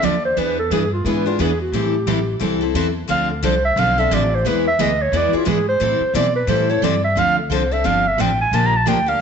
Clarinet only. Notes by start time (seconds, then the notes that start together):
0.05 D5
0.25 C5
0.38 B4
0.59 A4
0.72 G#4
0.93 F4
1.06 E4
1.26 F4
1.41 G#4
1.61 F#4
1.74 G4
3.11 F5
3.31 A4
3.45 C5
3.65 E5
3.79 F5
4.00 E5
4.14 D5
4.35 C5
4.47 B4
4.68 E5
4.81 D#5
5.02 C#5
5.17 D5
5.37 F4
5.50 G#4
5.69 C5
6.16 D5
6.36 B4
6.49 C5
6.70 C#5
6.84 D5
7.04 E5
7.19 F5
7.39 A4
7.53 C5
7.73 E5
7.86 F5
8.08 E5
8.21 G5
8.41 G#5
8.55 A5
8.66 A#5
8.77 A5
8.88 G5
9.08 F5